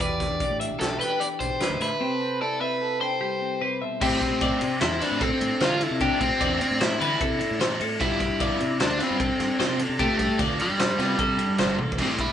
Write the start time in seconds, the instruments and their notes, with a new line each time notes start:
0.00 fingered electric bass E2, clean electric guitar E3 G4 B4, overdriven electric guitar D5, kick, closed hi-hat
0.20 clean electric guitar D4, kick, snare, closed hi-hat
0.30 fingered electric bass E2
0.40 clean electric guitar G4 D5, kick, closed hi-hat
0.51 fingered electric bass A2
0.60 clean electric guitar D4 E5, closed hi-hat
0.71 fingered electric bass B1
0.80 fingered electric bass B1, clean electric guitar G4, overdriven electric guitar A4, snare, closed hi-hat
0.99 clean electric guitar G4 G5, overdriven electric guitar B4, snare, closed hi-hat
1.20 clean electric guitar G4, overdriven electric guitar D5, closed hi-hat
1.40 fingered electric bass B1, clean electric guitar D4, overdriven electric guitar C5, kick, closed hi-hat
1.60 clean electric guitar E3 B4, snare, closed hi-hat
1.70 fingered electric bass D2
1.80 fingered electric bass A2, clean electric guitar D3 E5, overdriven electric guitar B4, snare, closed hi-hat
2.01 clean electric guitar C3 C4 G4
2.11 clean electric guitar A4
2.21 clean electric guitar C4
2.41 clean electric guitar E4 D5, overdriven electric guitar A4
2.61 clean electric guitar C4 E5, overdriven electric guitar B4
2.82 clean electric guitar A4
3.01 clean electric guitar D4 G5, overdriven electric guitar C5
3.11 clean electric guitar E4
3.21 clean electric guitar G3 G4
3.42 clean electric guitar C4
3.61 clean electric guitar C3 B4
3.82 clean electric guitar B2 E5
4.01 fingered electric bass A2, overdriven electric guitar E3 A3 C4 E4, clean electric guitar G4, kick, crash
4.21 muted overdriven electric guitar stroke, kick, snare, ride
4.32 fingered electric bass A2
4.41 overdriven electric guitar E3 A3 C4 E4, clean electric guitar D5, kick, snare, ride
4.61 fingered electric bass C3, muted overdriven electric guitar stroke, ride
4.81 fingered electric bass E2, overdriven electric guitar E4, clean electric guitar C5, muted overdriven electric guitar stroke, snare, ride
5.01 overdriven electric guitar E3 A3 C4 D4 E4, clean electric guitar B4, snare, ride
5.12 fingered electric bass A2
5.21 overdriven electric guitar C4, clean electric guitar A4, muted overdriven electric guitar stroke, kick, snare, ride
5.41 fingered electric bass A2, muted overdriven electric guitar stroke, ride
5.60 fingered electric bass D3, overdriven electric guitar E3 A3 C4 E4 F4, clean electric guitar C5, snare, ride
5.81 overdriven electric guitar E4, clean electric guitar A4, muted overdriven electric guitar stroke, ride
5.91 fingered electric bass C3
6.00 overdriven electric guitar E3 A3 C4 D4 E4, clean electric guitar G4, kick, ride
6.21 fingered electric bass A2, overdriven electric guitar C4, muted overdriven electric guitar stroke, kick, ride
6.40 fingered electric bass E2, overdriven electric guitar E3 A3 C4 E4, clean electric guitar D5, kick, ride
6.59 overdriven electric guitar C4, muted overdriven electric guitar stroke, ride
6.71 fingered electric bass A2
6.79 overdriven electric guitar E4, clean electric guitar C5, muted overdriven electric guitar stroke, snare, ride
6.99 fingered electric bass D3, overdriven electric guitar E3 A3 C4 E4, clean electric guitar B4, ride
7.20 fingered electric bass C3, clean electric guitar A4, muted overdriven electric guitar stroke, kick, ride
7.39 muted overdriven electric guitar stroke, ride
7.51 fingered electric bass A2
7.59 overdriven electric guitar E3 A3 C4 E4, clean electric guitar C5, snare, ride
7.80 fingered electric bass A2, clean electric guitar A4, muted overdriven electric guitar stroke, ride
7.99 fingered electric bass G2, overdriven electric guitar D3 F3 B3 E4 F4, clean electric guitar G4, kick, crash
8.20 muted overdriven electric guitar stroke, kick, snare, ride
8.31 fingered electric bass G2
8.40 overdriven electric guitar D3 F3 B3 F4, clean electric guitar D5, kick, ride
8.60 fingered electric bass C3, muted overdriven electric guitar stroke, ride
8.80 fingered electric bass D2, overdriven electric guitar D4, clean electric guitar C5, muted overdriven electric guitar stroke, snare, ride
8.99 overdriven electric guitar D3 F3 B3 C4 F4, clean electric guitar B4, snare, ride
9.11 fingered electric bass G2
9.19 clean electric guitar A4, muted overdriven electric guitar stroke, kick, ride
9.40 fingered electric bass G2, muted overdriven electric guitar stroke, snare, ride
9.59 fingered electric bass C3, overdriven electric guitar D3 F3 B3 F4, clean electric guitar C5, snare, ride
9.79 clean electric guitar A4, muted overdriven electric guitar stroke, ride
9.89 fingered electric bass C3
9.99 overdriven electric guitar D3 F3 A3 B3 F4, clean electric guitar G4, kick, ride
10.19 fingered electric bass G2, muted overdriven electric guitar stroke, kick, snare, ride
10.38 fingered electric bass D2, overdriven electric guitar D3 F3 B3 F4, clean electric guitar D5, kick, snare, ride
10.59 overdriven electric guitar G3, muted overdriven electric guitar stroke, ride
10.69 fingered electric bass G2
10.79 clean electric guitar C5, muted overdriven electric guitar stroke, snare, ride
10.98 fingered electric bass C3, overdriven electric guitar D3 F3 B3 F4, clean electric guitar B4, snare, ride
11.18 fingered electric bass C3, clean electric guitar A4, muted overdriven electric guitar stroke, kick, ride
11.38 muted overdriven electric guitar stroke, ride
11.49 fingered electric bass G2
11.58 fingered electric bass G1, overdriven electric guitar D3 F3 B3 F4, clean electric guitar C5, snare, ride
11.78 fingered electric bass A1, clean electric guitar A4, muted overdriven electric guitar stroke, high tom
11.92 kick
11.98 fingered electric bass A2, overdriven electric guitar E3 A3 C4 E4, clean electric guitar G4, kick, crash, ride
12.18 overdriven electric guitar E4, muted overdriven electric guitar stroke, kick, ride